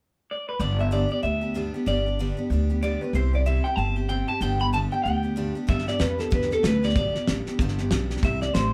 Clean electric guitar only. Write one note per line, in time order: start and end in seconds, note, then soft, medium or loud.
0.31 0.47 D5 medium
0.49 0.60 B4 medium
0.60 0.79 D5 medium
0.80 0.92 E5 medium
0.92 1.09 D5 medium
1.12 1.23 D5 medium
1.23 1.70 E5 medium
1.88 2.79 D5 medium
2.83 3.02 D5 medium
3.02 3.14 B4 medium
3.15 3.34 C5 medium
3.35 3.40 D5 medium
3.46 3.65 E5 medium
3.64 3.76 G5 loud
3.76 3.96 A5 medium
3.96 4.08 G5 medium
4.09 4.27 G5 loud
4.28 4.42 A5 loud
4.42 4.59 G5 loud
4.61 4.66 B5 loud
4.74 4.79 A5 loud
4.92 5.02 G5 medium
5.04 5.51 G5 medium
5.70 5.86 E5 loud
5.88 6.01 D5 medium
6.00 6.19 B4 medium
6.19 6.32 A4 medium
6.34 6.52 B4 medium
6.53 6.64 A4 medium
6.67 6.85 B4 medium
6.85 6.96 D5 medium
6.97 7.26 D5 medium
8.25 8.41 E5 loud
8.42 8.54 D5 medium
8.54 8.73 C5 medium